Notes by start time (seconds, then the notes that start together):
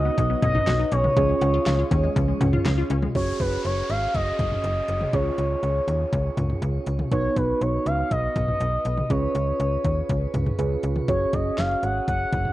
Already playing: C#2 D#4 F#4 B4 C#5 D#5
0.05 B3
0.18 B1 F#3, kick, closed hi-hat
0.30 B3
0.42 B1 C#4 D#5, kick, closed hi-hat, mid tom
0.55 D#4, mid tom
0.67 B1 F#4, snare, closed hi-hat
0.80 D#4
0.92 B1 C#4 C#5, closed hi-hat
1.04 B3, mid tom
1.17 C#2 F3 C#4 F4 G#4 C#5, kick, closed hi-hat
1.29 G#3
1.41 C#2 C#4, closed hi-hat, cowbell
1.54 F4
1.66 C#2 F5, snare, closed hi-hat
1.79 F4
1.91 D#2 C#4, kick, closed hi-hat, cowbell
2.03 G#3
2.16 C#2 F3, kick, closed hi-hat
2.28 G#3
2.41 C#2 C#4, closed hi-hat, mid tom, cowbell
2.53 F4, mid tom
2.65 C#2 F5, snare, closed hi-hat
2.78 F4
2.90 C#2 C#4, closed hi-hat
3.02 G#3, mid tom
3.15 F#1 C#4 F#4 G#4 C#5, kick, closed hi-hat, downlifter
3.40 F#1 B4, kick, closed hi-hat
3.65 F#1 C#5, closed hi-hat
3.89 G#1 F5, closed hi-hat
4.14 F#1 D#5, kick, closed hi-hat
4.39 F#1, kick, closed hi-hat, mid tom
4.52 mid tom
4.64 F#1, closed hi-hat
4.88 F#1, closed hi-hat
5.01 mid tom
5.13 C#2 C#4 F4 G#4 C#5, kick, closed hi-hat
5.38 C#2, closed hi-hat
5.63 C#2, closed hi-hat
5.88 D#2, closed hi-hat
6.13 C#2, kick, closed hi-hat
6.37 C#2, closed hi-hat, mid tom
6.50 mid tom
6.62 C#2, closed hi-hat
6.87 C#2, closed hi-hat
6.99 mid tom
7.12 B1 B3 D#4 F#4 B4 C#5, kick, closed hi-hat
7.36 B1 B4, kick, closed hi-hat
7.61 B1 C#5, closed hi-hat
7.86 C#2 F5, closed hi-hat
8.11 B1 D#5, kick, closed hi-hat
8.36 B1, kick, closed hi-hat, mid tom
8.48 mid tom
8.60 B1, closed hi-hat
8.85 B1, closed hi-hat
8.98 mid tom
9.10 C#2 C#4 F4 G#4 B4 C#5, kick, closed hi-hat
9.35 C#2, closed hi-hat
9.60 C#2, closed hi-hat
9.84 D#2, kick, closed hi-hat
10.09 C#2, kick, closed hi-hat
10.34 C#2, closed hi-hat, mid tom
10.47 mid tom
10.59 C#2 C#4 F4 G#4 B4, closed hi-hat
10.83 C#2, closed hi-hat
10.96 mid tom
11.08 F#1 C#4 F#4 G#4 C#5, kick, closed hi-hat
11.33 F#1 D#5, kick, closed hi-hat
11.58 F#1 F5, snare, closed hi-hat
11.83 G#1 F#5, closed hi-hat
12.08 F#1 F#5, kick, closed hi-hat
12.32 F#1, kick, closed hi-hat, mid tom
12.45 mid tom